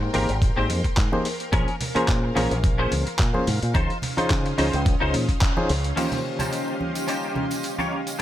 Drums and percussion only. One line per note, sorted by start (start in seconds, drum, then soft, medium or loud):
0.14 open hi-hat medium
0.14 high conga medium
0.29 closed hi-hat soft
0.42 kick loud
0.42 closed hi-hat medium
0.70 open hi-hat loud
0.70 high conga medium
0.84 kick medium
0.84 closed hi-hat soft
0.97 kick loud
0.97 clap loud
0.97 closed hi-hat medium
1.13 high conga medium
1.25 open hi-hat medium
1.40 closed hi-hat soft
1.53 kick loud
1.53 closed hi-hat medium
1.53 high conga medium
1.68 closed hi-hat soft
1.81 open hi-hat loud
1.81 low conga medium
1.96 closed hi-hat medium
1.96 high conga medium
2.08 kick loud
2.08 clap loud
2.08 closed hi-hat medium
2.36 open hi-hat medium
2.36 high conga medium
2.51 closed hi-hat medium
2.64 kick loud
2.64 closed hi-hat medium
2.91 open hi-hat medium
2.91 high conga medium
3.07 closed hi-hat medium
3.19 kick loud
3.19 clap loud
3.19 closed hi-hat medium
3.34 high conga medium
3.47 open hi-hat medium
3.47 low conga medium
3.63 closed hi-hat medium
3.74 kick loud
3.74 closed hi-hat medium
3.74 high conga medium
3.90 closed hi-hat soft
4.02 open hi-hat loud
4.02 low conga medium
4.17 closed hi-hat medium
4.17 high conga medium
4.30 kick loud
4.30 clap loud
4.30 closed hi-hat medium
4.46 closed hi-hat soft
4.58 open hi-hat medium
4.58 high conga medium
4.73 closed hi-hat medium
4.86 kick loud
4.86 closed hi-hat medium
5.14 open hi-hat loud
5.14 high conga medium
5.29 kick medium
5.29 closed hi-hat medium
5.41 kick loud
5.41 clap loud
5.41 closed hi-hat medium
5.57 high conga medium
5.69 open hi-hat medium
5.84 closed hi-hat medium
5.97 closed hi-hat medium
5.97 crash medium
5.97 tambourine medium
5.97 high conga medium
6.12 closed hi-hat soft
6.12 tambourine soft
6.12 low conga medium
6.39 closed hi-hat soft
6.39 tambourine medium
6.39 high conga soft
6.39 low conga medium
6.53 closed hi-hat medium
6.53 tambourine medium
6.68 tambourine soft
6.81 high conga medium
6.95 closed hi-hat soft
6.95 tambourine medium
7.08 closed hi-hat medium
7.08 tambourine medium
7.23 tambourine soft
7.35 high conga medium
7.35 low conga medium
7.51 closed hi-hat soft
7.51 tambourine medium
7.63 closed hi-hat medium
7.63 tambourine medium
7.79 tambourine soft
7.79 high conga medium
8.07 closed hi-hat soft
8.07 tambourine medium